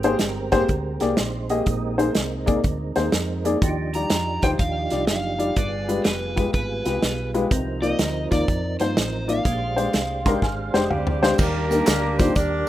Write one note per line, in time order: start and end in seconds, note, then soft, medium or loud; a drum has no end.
0.00 0.13 G#1 loud
0.00 0.49 G#2 medium
0.00 1.64 G#3 medium
0.00 1.65 C4 medium
0.00 1.16 G4 medium
0.00 1.16 A#4 medium
0.00 closed hi-hat medium
0.04 0.16 A#3 medium
0.04 0.16 G4 medium
0.04 0.16 G#4 medium
0.04 0.16 C5 loud
0.19 0.62 G1 medium
0.19 snare medium
0.19 closed hi-hat medium
0.52 0.64 A#3 loud
0.52 0.64 G4 medium
0.52 0.64 G#4 medium
0.52 0.64 C5 loud
0.52 kick loud
0.52 snare soft
0.52 closed hi-hat medium
0.69 0.97 D2 medium
0.69 kick medium
0.69 closed hi-hat medium
1.00 1.16 C2 medium
1.00 1.13 A#3 medium
1.00 1.13 G4 medium
1.00 1.13 G#4 medium
1.00 1.13 D5 medium
1.00 snare soft
1.00 closed hi-hat medium
1.17 1.60 A#1 medium
1.17 1.49 D#4 medium
1.17 1.49 C5 medium
1.17 snare medium
1.17 closed hi-hat medium
1.50 1.62 A#3 medium
1.50 1.62 G4 medium
1.50 1.97 G4 medium
1.50 1.62 G#4 medium
1.50 1.62 D#5 medium
1.50 1.97 D#5 medium
1.50 closed hi-hat medium
1.66 2.08 A#1 medium
1.66 2.43 A#2 medium
1.66 3.58 G#3 medium
1.66 3.58 C4 medium
1.66 3.58 D#4 medium
1.66 3.58 A#4 medium
1.66 kick medium
1.66 closed hi-hat medium
1.98 2.10 A#3 medium
1.98 2.10 D#4 medium
1.98 2.10 G#4 medium
1.98 2.10 C5 medium
1.98 closed hi-hat medium
2.15 2.57 C2 medium
2.15 snare medium
2.15 closed hi-hat medium
2.46 2.59 A#3 medium
2.46 2.59 D#4 medium
2.46 2.59 G#4 medium
2.46 2.59 D5 medium
2.46 kick medium
2.46 closed hi-hat medium
2.64 2.92 D2 medium
2.64 kick loud
2.64 closed hi-hat medium
2.96 3.11 D#2 medium
2.96 3.08 A#3 medium
2.96 3.08 D#4 medium
2.96 3.08 G#4 medium
2.96 3.08 C5 medium
2.96 snare soft
2.96 closed hi-hat medium
3.12 3.55 F2 medium
3.12 snare loud
3.12 closed hi-hat medium
3.44 3.57 A#3 medium
3.44 3.56 D#4 medium
3.44 3.57 G#4 medium
3.44 3.57 D5 loud
3.44 closed hi-hat medium
3.62 4.03 D#2 medium
3.62 4.39 D#3 medium
3.62 5.53 F3 medium
3.62 5.53 D4 medium
3.62 5.53 D#4 medium
3.62 3.70 F#4 medium
3.62 kick loud
3.62 closed hi-hat medium
3.69 5.56 G4 medium
3.94 4.06 G3 medium
3.94 4.06 D#4 medium
3.94 4.06 F4 medium
3.94 4.06 D5 medium
3.94 4.45 A#5 medium
3.94 closed hi-hat medium
4.10 4.38 F2 medium
4.10 snare medium
4.10 closed hi-hat medium
4.42 4.57 D2 medium
4.42 4.55 G3 medium
4.42 4.55 D#4 medium
4.42 4.55 F4 medium
4.42 4.55 C5 medium
4.42 4.48 G5 medium
4.42 kick loud
4.42 snare soft
4.42 closed hi-hat medium
4.59 4.86 D#2 medium
4.59 5.07 F5 loud
4.59 kick loud
4.59 closed hi-hat medium
4.90 5.06 C2 medium
4.90 5.03 G3 medium
4.90 5.03 D#4 medium
4.90 5.03 F4 medium
4.90 5.03 D5 medium
4.90 snare soft
4.90 closed hi-hat medium
5.07 5.50 F#1 medium
5.07 5.58 F5 medium
5.07 snare medium
5.07 closed hi-hat medium
5.38 5.51 G3 medium
5.38 5.51 D#4 medium
5.38 5.51 F4 medium
5.38 5.51 D5 medium
5.38 closed hi-hat medium
5.56 5.98 G1 medium
5.56 6.33 G2 medium
5.56 7.48 G3 medium
5.56 7.48 B3 medium
5.56 7.48 F4 medium
5.56 7.48 G#4 medium
5.56 6.07 D5 medium
5.56 kick medium
5.56 closed hi-hat medium
5.88 6.00 G#3 medium
5.88 6.00 F4 medium
5.88 6.00 G4 medium
5.88 6.00 B4 medium
5.88 closed hi-hat medium
6.04 6.47 F1 medium
6.04 6.53 B4 medium
6.04 snare loud
6.04 closed hi-hat medium
6.36 6.48 G#3 medium
6.36 6.48 F4 medium
6.36 6.48 G4 medium
6.36 6.48 B4 medium
6.36 kick medium
6.36 closed hi-hat medium
6.54 6.81 G#1 medium
6.54 7.30 B4 medium
6.54 kick loud
6.54 closed hi-hat medium
6.85 7.00 C2 medium
6.85 6.97 G#3 medium
6.85 6.98 F4 medium
6.85 6.97 G4 medium
6.85 6.97 B4 medium
6.85 snare soft
6.85 closed hi-hat medium
7.03 7.44 B1 loud
7.03 snare medium
7.03 closed hi-hat medium
7.34 7.46 G#3 medium
7.34 7.46 F4 medium
7.34 7.46 G4 medium
7.34 7.46 B4 medium
7.34 closed hi-hat medium
7.51 7.92 C2 loud
7.51 8.28 C3 medium
7.51 9.41 F3 medium
7.51 9.41 C4 medium
7.51 9.41 D#4 medium
7.51 9.41 A#4 medium
7.51 kick loud
7.51 closed hi-hat medium
7.82 7.94 A#3 medium
7.82 7.94 D#4 medium
7.82 7.94 F4 medium
7.82 7.94 D5 medium
7.82 8.31 D#5 medium
7.82 closed hi-hat medium
7.99 8.26 D2 medium
7.99 snare medium
7.99 closed hi-hat medium
8.31 8.46 D#2 loud
8.31 8.43 A#3 medium
8.31 8.43 D#4 medium
8.31 8.43 F4 medium
8.31 8.43 D5 medium
8.31 8.79 D5 medium
8.31 kick medium
8.31 snare soft
8.31 closed hi-hat medium
8.48 8.75 F2 medium
8.48 kick loud
8.48 closed hi-hat medium
8.80 8.94 G2 medium
8.80 8.92 A#3 medium
8.80 8.92 D#4 medium
8.80 8.92 F4 medium
8.80 9.30 C5 medium
8.80 8.92 C5 medium
8.80 snare soft
8.80 closed hi-hat medium
8.97 9.38 A1 medium
8.97 snare loud
8.97 closed hi-hat medium
9.28 9.40 A#3 medium
9.28 9.40 D#4 medium
9.28 9.40 F4 medium
9.28 9.40 D5 medium
9.28 11.19 F5 medium
9.28 closed hi-hat medium
9.45 9.86 A#1 loud
9.45 10.22 A#2 medium
9.45 11.36 G#3 medium
9.45 9.53 C#4 soft
9.45 11.35 G4 medium
9.45 11.23 C5 medium
9.45 kick loud
9.45 closed hi-hat medium
9.52 11.38 D4 medium
9.76 9.89 G#3 medium
9.76 9.88 D4 medium
9.76 9.88 G4 medium
9.76 9.88 C5 medium
9.76 closed hi-hat medium
9.93 10.35 C2 medium
9.93 snare medium
9.93 closed hi-hat medium
10.26 10.37 G#3 medium
10.26 10.37 D4 medium
10.26 10.38 G4 medium
10.26 10.38 A#4 loud
10.26 10.34 A#5 medium
10.26 10.41 C6 medium
10.26 kick loud
10.26 snare soft
10.26 closed hi-hat medium
10.36 10.43 G5 medium
10.42 10.69 G#1 medium
10.42 10.80 F5 medium
10.42 10.72 G#5 medium
10.42 kick medium
10.42 snare soft
10.73 10.88 F1 medium
10.73 10.85 G#3 medium
10.73 10.85 D4 medium
10.73 10.86 G4 medium
10.73 10.85 C5 medium
10.73 10.89 G5 medium
10.73 snare medium
10.83 10.91 D#5 medium
10.90 11.32 D2 medium
10.90 11.36 G3 medium
10.90 11.36 C4 medium
10.90 11.35 D4 medium
10.90 11.36 G4 medium
10.90 11.21 D5 medium
10.90 11.20 F5 medium
10.90 mid tom medium
11.07 floor tom medium
11.22 11.34 G#3 medium
11.22 11.34 D4 medium
11.22 11.34 G4 medium
11.22 11.34 C5 loud
11.22 11.39 C5 medium
11.22 11.38 F5 medium
11.22 snare medium
11.38 11.80 D#2 loud
11.38 12.16 D#3 medium
11.38 12.69 G3 medium
11.38 12.19 A#3 medium
11.38 12.69 A#3 medium
11.38 12.31 D4 medium
11.38 12.69 D4 medium
11.38 12.32 G4 medium
11.38 12.69 G4 medium
11.38 12.19 A#4 medium
11.38 kick loud
11.38 crash loud
11.38 tambourine medium
11.70 11.82 G3 medium
11.70 11.82 A#3 medium
11.70 11.82 D4 medium
11.70 11.82 D#4 medium
11.70 11.82 A#4 medium
11.70 closed hi-hat medium
11.70 tambourine medium
11.87 12.29 D2 medium
11.87 snare loud
11.87 clap loud
11.87 closed hi-hat medium
11.87 tambourine loud
12.18 12.31 G3 medium
12.18 12.31 A#3 medium
12.18 12.35 C4 medium
12.18 12.31 D4 medium
12.18 12.31 D#4 medium
12.18 12.31 F4 medium
12.18 12.35 C5 medium
12.18 kick loud
12.18 snare soft
12.18 closed hi-hat medium
12.18 tambourine soft
12.35 12.63 D#2 medium
12.35 12.69 D4 medium
12.35 12.69 G4 medium
12.35 12.69 A#4 medium
12.35 12.69 D5 loud
12.35 kick medium
12.35 closed hi-hat medium
12.35 tambourine medium